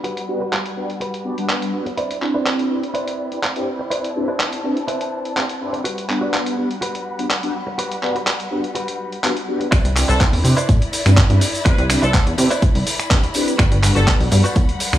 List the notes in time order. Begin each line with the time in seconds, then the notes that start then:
Already playing: G3 F#5 B5
0.04 F#4 G4 B4, closed hi-hat
0.17 closed hi-hat
0.28 B3 D4 F#4 G4 B4
0.40 F#4 G4 B4
0.53 clap, closed hi-hat
0.66 closed hi-hat
0.76 B3 D4 F#4 G4 B4, muted clean electric guitar stroke
0.90 closed hi-hat
1.00 F#4 G4 B4, closed hi-hat
1.14 closed hi-hat
1.24 B3 D4 F#4 G4 D5
1.38 G3 B3 D4 B4 F#5, closed hi-hat
1.49 clap, closed hi-hat
1.62 closed hi-hat
1.73 B3 D4 F#4 G4 B4
1.86 muted clean electric guitar stroke, closed hi-hat
1.97 C4 E4 B4 C5 D5 B5, closed hi-hat
2.11 closed hi-hat
2.21 C4 D4 E4 G4 B5, clap
2.34 E4 B4 C5 D5
2.46 clap, closed hi-hat
2.59 closed hi-hat
2.70 C4 D4 E4 G4 B4, muted clean electric guitar stroke
2.83 closed hi-hat
2.94 E4 B4 C5 D5, closed hi-hat
3.08 closed hi-hat
3.31 C4 D4 E4 G4 B4, closed hi-hat
3.43 clap, closed hi-hat
3.55 C4 D4 E4 G4 B4, closed hi-hat
3.79 muted clean electric guitar stroke
3.90 E4 B4 C5 D5 A5, closed hi-hat
4.04 closed hi-hat
4.15 C4 D4 E4 G4 B4
4.28 E4 B4 C5 D5
4.40 clap, closed hi-hat
4.53 closed hi-hat
4.64 C4 D4 E4 G4 B4, muted clean electric guitar stroke
4.77 closed hi-hat
4.88 E4 B4 C5 E5, closed hi-hat
5.01 closed hi-hat
5.25 closed hi-hat
5.36 C4 D4 E4 G4 B4, clap, closed hi-hat
5.49 closed hi-hat
5.61 C4 D4 E4 G4 B4
5.73 C4 D4 E4 G4 B4, muted clean electric guitar stroke, closed hi-hat
5.84 G3 F#4 G4 B4 F#5 B5, closed hi-hat
5.98 closed hi-hat
6.09 G3 B3 D4 B4 F#5, clap
6.21 F#4 G4 D5
6.33 clap, closed hi-hat
6.46 closed hi-hat
6.57 B3 D4 F#4 G4 B4, muted clean electric guitar stroke
6.71 closed hi-hat
6.81 F#4 G4 B4, closed hi-hat
6.95 closed hi-hat
7.18 B3 D4 F#4 G4 B4, closed hi-hat
7.30 clap, closed hi-hat
7.43 B3 D4 F#4 G4 B4, closed hi-hat
7.67 muted clean electric guitar stroke
7.78 F#4 G4 B4, closed hi-hat
7.92 closed hi-hat
8.02 B3 D4 F#4 G4 B4, clap
8.15 F#4 G4 B4, closed hi-hat
8.27 clap, closed hi-hat
8.40 closed hi-hat
8.51 B3 D4 F#4 G4 B4, muted clean electric guitar stroke
8.64 closed hi-hat
8.75 F#4 G4 B4, closed hi-hat
8.88 closed hi-hat
9.12 closed hi-hat
9.24 B3 D4 F#4 G4 B4, clap, closed hi-hat
9.37 closed hi-hat
9.48 B3 D4 F#4 G4 B4
9.60 B3 D4 F#4 G4 B4, muted clean electric guitar stroke, closed hi-hat
9.71 C2 E4 B4 C5 D5 B5, finger snap, kick, closed hi-hat, tambourine, shaker
9.85 C2, closed hi-hat
9.96 C4 D4 E4 G4 B5, finger snap, clap, open hi-hat, tambourine, shaker
10.08 C2 E4 A4 B4 C5 D5, tambourine, shaker
10.20 kick, clap, closed hi-hat, tambourine, shaker
10.33 E2, open hi-hat
10.44 C3 C4 D4 E4 G4 B4, muted clean electric guitar stroke, open hi-hat, tambourine, shaker
10.57 E4 B4 C5 D5, closed hi-hat, tambourine, shaker
10.69 A2, kick, closed hi-hat, tambourine, shaker
10.82 closed hi-hat
10.92 muted clean electric guitar stroke, open hi-hat, tambourine, shaker
11.06 G2 C4 D4 E4 G4 B4, finger snap, closed hi-hat, tambourine, shaker
11.16 muted clean electric guitar stroke, kick, clap, closed hi-hat, shaker
11.29 G2 C4 D4 E4 G4 B4, muted clean electric guitar stroke, closed hi-hat
11.41 open hi-hat, tambourine, shaker
11.55 tambourine, shaker
11.65 C2 E4 B4 C5 D5, finger snap, kick, closed hi-hat, shaker
11.78 C2, closed hi-hat
11.90 C4 D4 E4 G4 B4, finger snap, open hi-hat, tambourine, shaker
12.02 C2 E4 A4 B4 C5 D5, closed hi-hat, tambourine, shaker
12.14 A4, kick, clap, closed hi-hat, tambourine, shaker
12.27 E2, closed hi-hat
12.37 C3 C4 D4 E4 G4 B4, muted clean electric guitar stroke, open hi-hat, tambourine, shaker
12.50 E4 B4 C5 D5, closed hi-hat, tambourine, shaker
12.62 kick, closed hi-hat, tambourine, shaker
12.75 C2, open hi-hat
12.86 muted clean electric guitar stroke, open hi-hat, tambourine, shaker
12.99 finger snap, closed hi-hat, tambourine, shaker
13.10 C4 D4 E4 G4 B4, muted clean electric guitar stroke, kick, clap, closed hi-hat, tambourine, shaker
13.23 muted clean electric guitar stroke, closed hi-hat
13.34 C4 D4 E4 G4 B4, open hi-hat, tambourine, shaker
13.48 C4 D4 E4 G4 B4, closed hi-hat, tambourine, shaker
13.58 G1 G3 F#4 G4 B4 D5 F#5, finger snap, kick, closed hi-hat, tambourine, shaker
13.72 G1, closed hi-hat
13.83 G3 B3 D4 B4 F#5, finger snap, clap, open hi-hat, tambourine, shaker
13.95 G1 F#4 G4 A4 B4 D5, tambourine, shaker
14.07 kick, clap, closed hi-hat, tambourine, shaker
14.21 B1, open hi-hat
14.31 G2 B3 D4 F#4 G4 B4, muted clean electric guitar stroke, open hi-hat, tambourine, shaker
14.44 F#4 G4 B4 D5, tambourine, shaker
14.56 E2, kick, closed hi-hat, shaker
14.69 closed hi-hat
14.79 muted clean electric guitar stroke, open hi-hat, tambourine, shaker
14.93 D2 B3 D4 F#4 G4 B4, finger snap, closed hi-hat, tambourine, shaker